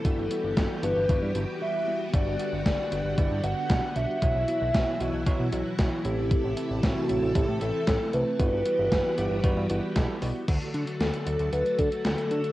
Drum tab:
CC |----------------|----------------|----------------|----------------|
HH |x-x-x-x-x-x-----|x-x-x-x-x-x-x-x-|x-x-x-x-x-x-x-x-|x-x-x-x-x-x-x-x-|
SD |----o-----------|----o-------o---|----o-------o---|----o-------o---|
BD |o---o---o-------|o---o---o---o---|o---o---o---o---|o---o---o---o---|

CC |----------------|x---------------|
HH |x-x-x-x-x-x-x-o-|xxxxxxxxxxxxxxxx|
SD |----o-------o---|----o-------o---|
BD |o---o---o---o---|o---------o-----|